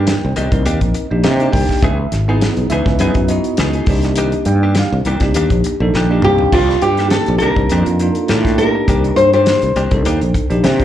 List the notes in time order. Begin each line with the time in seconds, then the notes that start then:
Already playing: G2 A#3 D4 D#4 A#4 G5
0.07 snare, closed hi-hat
0.25 C2
0.36 C2 D#3 A#3 D4 G4 D#5, closed hi-hat
0.52 C2 A#3 C4 D#4 A#4, muted clean electric guitar stroke, kick, closed hi-hat
0.66 D#2 D#3 A#3 D4 G4, closed hi-hat
0.81 A#1, muted clean electric guitar stroke, kick, closed hi-hat
0.94 muted clean electric guitar stroke, closed hi-hat
1.11 A#1 A#3 D4 D#4 G4
1.24 C3 D#3 A#3 D4 G4 D#5, snare, closed hi-hat
1.40 A#3 D4 D#4 G4, closed hi-hat
1.53 C2 G5, kick, open hi-hat
1.69 muted clean electric guitar stroke, kick, snare
1.82 C#2 E3 B3 D#4 G#4 E5, kick, closed hi-hat
2.00 muted clean electric guitar stroke
2.12 G#1, muted clean electric guitar stroke, snare, closed hi-hat
2.28 B3 D#4 E4 G#4
2.41 muted clean electric guitar stroke, snare, closed hi-hat
2.57 B1, closed hi-hat
2.70 C#2 E3 B3 D#4 E4 G#4 B4 E5, closed hi-hat
2.86 C#2, muted clean electric guitar stroke, kick, snare
2.99 F#2 E3 B3 D#4 E4 G#4 B4, closed hi-hat
3.14 F#2, muted clean electric guitar stroke, kick, closed hi-hat
3.28 B3 D#4 E4 F#4 D#5, muted clean electric guitar stroke, closed hi-hat
3.44 closed hi-hat
3.57 C#2 E3 B3 D#4 G#4, snare, closed hi-hat
3.73 B3 D#4 G#4, closed hi-hat
3.86 C2 A#3 D4 D#4 G4, kick, open hi-hat
4.02 muted clean electric guitar stroke, snare, closed hi-hat
4.16 D#3 A#3 D4 G4 D#5, closed hi-hat
4.32 muted clean electric guitar stroke, closed hi-hat
4.45 G2 G5, muted clean electric guitar stroke, closed hi-hat
4.63 A#3 D4 G4
4.75 muted clean electric guitar stroke, snare, closed hi-hat
4.79 F5
4.92 C2
5.05 C2 D#3 A#3 D4 G4, closed hi-hat
5.20 C2 A#3 D4 D#4 G4, kick, snare, closed hi-hat
5.34 D#2 D#3 A#3 D4 G4, closed hi-hat
5.50 A#1, muted clean electric guitar stroke, kick, closed hi-hat
5.64 muted clean electric guitar stroke, closed hi-hat
5.80 A#1 A#3 D4 D#4 A4
5.94 A#1 D#3 A#3 D4 G4 G5, snare
6.10 A#3 D4 D#4 G4
6.22 C2 G4 F5, muted clean electric guitar stroke, mid tom
6.39 muted clean electric guitar stroke, floor tom
6.52 C2 D#3 A#3 D4 F4 G4, kick, crash
6.70 muted clean electric guitar stroke, snare
6.82 G2 G4, muted clean electric guitar stroke, closed hi-hat
6.97 A#3 D4 D#4 G4, snare, closed hi-hat
7.10 A4, muted clean electric guitar stroke, snare, closed hi-hat
7.26 A#1, closed hi-hat
7.38 C2 D#3 A#3 D4 D#4 A#4, closed hi-hat
7.43 D4 G4
7.56 C2, muted clean electric guitar stroke, kick
7.69 F2 D#3 A#3 D4 D#4 F4 G4, closed hi-hat
7.86 F2, muted clean electric guitar stroke, closed hi-hat
8.00 A#3 D4 D#4 F4, muted clean electric guitar stroke, closed hi-hat
8.14 A4, closed hi-hat
8.28 A2 D#3 A#3 D4 G4, snare, closed hi-hat
8.45 A#3 D4 G4, kick, snare, closed hi-hat
8.58 A#3 D4 D#4 G4 A#4, muted clean electric guitar stroke, closed hi-hat
8.75 muted clean electric guitar stroke
8.88 C2 D#3 A#3 D4 G4, kick, closed hi-hat
9.04 muted clean electric guitar stroke, closed hi-hat
9.16 G2 C5, muted clean electric guitar stroke, closed hi-hat
9.33 A#3 D4 G4 C5, closed hi-hat
9.46 muted clean electric guitar stroke, snare, closed hi-hat
9.62 C2, closed hi-hat
9.76 C2 D#3 A#3 D4 G4, closed hi-hat
9.91 C2 A#3 D4 D#4 A4, kick, closed hi-hat
10.05 D#2 D#3 A#3 D4 G4, closed hi-hat
10.21 A#1, muted clean electric guitar stroke, closed hi-hat
10.34 muted clean electric guitar stroke, kick, closed hi-hat
10.50 A#1 A#3 D4 D#4 G4, closed hi-hat
10.64 C3 D#3 A#3 D4 G4, snare, closed hi-hat
10.80 A#3 D4 D#4 F4 G4, kick, closed hi-hat